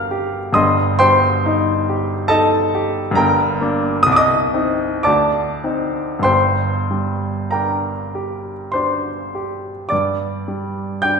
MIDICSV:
0, 0, Header, 1, 2, 480
1, 0, Start_track
1, 0, Key_signature, -2, "minor"
1, 0, Tempo, 896861
1, 299, Time_signature, 3, 2, 24, 8
1, 774, Tempo, 870827
1, 2214, Tempo, 1010101
1, 2694, Tempo, 1224490
1, 4134, Tempo, 1142857
1, 5165, End_track
2, 0, Start_track
2, 0, Title_t, "Grand piano"
2, 0, Program_c, 0, 0
2, 0, Control_c, 0, 64, 127
2, 0, Note_on_c, 0, 31, 64
2, 0, Note_on_c, 0, 43, 61
2, 0, Note_on_c, 0, 55, 54
2, 0, Note_on_c, 0, 62, 58
2, 0, Note_on_c, 0, 67, 55
2, 0, Note_on_c, 0, 70, 55
2, 0, Note_on_c, 0, 77, 71
2, 0, Note_on_c, 0, 79, 70
2, 0, Note_on_c, 0, 86, 75
2, 0, Note_on_c, 0, 89, 95
2, 0, Note_on_c, 0, 91, 101
2, 59, Note_off_c, 0, 67, 0
2, 59, Note_on_c, 0, 67, 63
2, 205, Note_off_c, 0, 70, 0
2, 273, Note_off_c, 0, 43, 0
2, 276, Note_off_c, 0, 31, 0
2, 276, Note_off_c, 0, 77, 0
2, 281, Note_on_c, 0, 43, 66
2, 288, Note_on_c, 0, 87, 94
2, 293, Note_on_c, 0, 84, 74
2, 294, Note_off_c, 0, 89, 0
2, 295, Note_on_c, 0, 75, 70
2, 299, Note_on_c, 0, 31, 64
2, 301, Note_off_c, 0, 67, 0
2, 306, Control_c, 0, 64, 0
2, 309, Note_off_c, 0, 55, 0
2, 309, Note_off_c, 0, 79, 0
2, 309, Note_off_c, 0, 86, 0
2, 311, Note_off_c, 0, 91, 0
2, 313, Note_off_c, 0, 62, 0
2, 402, Control_c, 0, 64, 127
2, 520, Note_off_c, 0, 84, 0
2, 521, Note_off_c, 0, 75, 0
2, 528, Note_on_c, 0, 84, 105
2, 530, Note_on_c, 0, 79, 78
2, 533, Note_on_c, 0, 72, 81
2, 534, Note_off_c, 0, 87, 0
2, 541, Note_on_c, 0, 55, 55
2, 781, Note_on_c, 0, 63, 65
2, 917, Note_off_c, 0, 55, 0
2, 1021, Note_on_c, 0, 67, 60
2, 1156, Note_off_c, 0, 63, 0
2, 1221, Note_off_c, 0, 79, 0
2, 1222, Note_off_c, 0, 72, 0
2, 1234, Note_on_c, 0, 81, 106
2, 1241, Note_on_c, 0, 69, 77
2, 1241, Note_on_c, 0, 75, 79
2, 1242, Note_off_c, 0, 84, 0
2, 1250, Note_on_c, 0, 63, 61
2, 1396, Note_off_c, 0, 67, 0
2, 1491, Note_on_c, 0, 67, 67
2, 1633, Note_off_c, 0, 63, 0
2, 1685, Note_off_c, 0, 43, 0
2, 1693, Note_on_c, 0, 43, 77
2, 1703, Note_off_c, 0, 69, 0
2, 1703, Note_off_c, 0, 75, 0
2, 1706, Note_off_c, 0, 31, 0
2, 1715, Note_on_c, 0, 82, 92
2, 1721, Note_on_c, 0, 70, 68
2, 1722, Note_off_c, 0, 81, 0
2, 1723, Note_on_c, 0, 79, 68
2, 1726, Note_on_c, 0, 31, 68
2, 1730, Note_off_c, 0, 67, 0
2, 1736, Control_c, 0, 64, 0
2, 1825, Control_c, 0, 64, 127
2, 1966, Note_on_c, 0, 58, 61
2, 1969, Note_on_c, 0, 62, 68
2, 2181, Note_off_c, 0, 43, 0
2, 2188, Note_off_c, 0, 70, 0
2, 2189, Note_off_c, 0, 79, 0
2, 2192, Note_off_c, 0, 58, 0
2, 2193, Note_off_c, 0, 62, 0
2, 2197, Note_on_c, 0, 87, 115
2, 2198, Note_off_c, 0, 31, 0
2, 2207, Note_off_c, 0, 82, 0
2, 2215, Note_on_c, 0, 36, 75
2, 2222, Control_c, 0, 64, 0
2, 2239, Note_off_c, 0, 87, 0
2, 2244, Note_on_c, 0, 86, 84
2, 2264, Note_on_c, 0, 87, 109
2, 2270, Note_on_c, 0, 75, 82
2, 2278, Note_off_c, 0, 86, 0
2, 2305, Control_c, 0, 64, 127
2, 2441, Note_on_c, 0, 60, 49
2, 2444, Note_on_c, 0, 63, 54
2, 2670, Note_off_c, 0, 75, 0
2, 2673, Note_off_c, 0, 60, 0
2, 2675, Note_off_c, 0, 63, 0
2, 2677, Note_on_c, 0, 86, 89
2, 2680, Note_off_c, 0, 36, 0
2, 2682, Note_on_c, 0, 81, 73
2, 2684, Note_on_c, 0, 74, 73
2, 2687, Note_off_c, 0, 87, 0
2, 2691, Note_on_c, 0, 38, 66
2, 2701, Control_c, 0, 64, 0
2, 2772, Control_c, 0, 64, 127
2, 2917, Note_on_c, 0, 60, 49
2, 2918, Note_on_c, 0, 63, 51
2, 3135, Note_on_c, 0, 43, 59
2, 3145, Note_off_c, 0, 81, 0
2, 3146, Note_off_c, 0, 74, 0
2, 3148, Note_on_c, 0, 84, 91
2, 3149, Note_off_c, 0, 60, 0
2, 3150, Note_off_c, 0, 63, 0
2, 3151, Note_off_c, 0, 38, 0
2, 3153, Note_on_c, 0, 79, 64
2, 3155, Note_on_c, 0, 72, 71
2, 3157, Note_on_c, 0, 31, 56
2, 3159, Note_off_c, 0, 86, 0
2, 3174, Control_c, 0, 64, 0
2, 3270, Control_c, 0, 64, 127
2, 3415, Note_on_c, 0, 55, 47
2, 3641, Note_off_c, 0, 79, 0
2, 3642, Note_off_c, 0, 72, 0
2, 3649, Note_on_c, 0, 82, 69
2, 3654, Note_off_c, 0, 84, 0
2, 3655, Note_on_c, 0, 70, 47
2, 3655, Note_on_c, 0, 79, 47
2, 3661, Note_on_c, 0, 62, 48
2, 3805, Note_off_c, 0, 55, 0
2, 3901, Note_on_c, 0, 67, 49
2, 4040, Note_off_c, 0, 62, 0
2, 4114, Note_off_c, 0, 70, 0
2, 4114, Note_off_c, 0, 79, 0
2, 4124, Note_on_c, 0, 84, 74
2, 4127, Note_off_c, 0, 82, 0
2, 4131, Note_on_c, 0, 72, 51
2, 4137, Note_on_c, 0, 62, 51
2, 4283, Note_off_c, 0, 67, 0
2, 4388, Note_on_c, 0, 67, 49
2, 4534, Note_off_c, 0, 62, 0
2, 4590, Note_off_c, 0, 43, 0
2, 4601, Note_off_c, 0, 31, 0
2, 4605, Note_off_c, 0, 72, 0
2, 4615, Note_on_c, 0, 86, 80
2, 4618, Note_off_c, 0, 84, 0
2, 4620, Note_on_c, 0, 74, 62
2, 4625, Note_off_c, 0, 67, 0
2, 4628, Note_on_c, 0, 43, 52
2, 4631, Control_c, 0, 64, 0
2, 4710, Control_c, 0, 64, 127
2, 4863, Note_on_c, 0, 55, 46
2, 5080, Note_off_c, 0, 74, 0
2, 5090, Note_on_c, 0, 91, 87
2, 5093, Note_on_c, 0, 79, 68
2, 5094, Note_off_c, 0, 86, 0
2, 5101, Note_on_c, 0, 62, 50
2, 5165, Note_off_c, 0, 43, 0
2, 5165, Note_off_c, 0, 55, 0
2, 5165, Note_off_c, 0, 62, 0
2, 5165, Note_off_c, 0, 79, 0
2, 5165, Note_off_c, 0, 91, 0
2, 5165, End_track
0, 0, End_of_file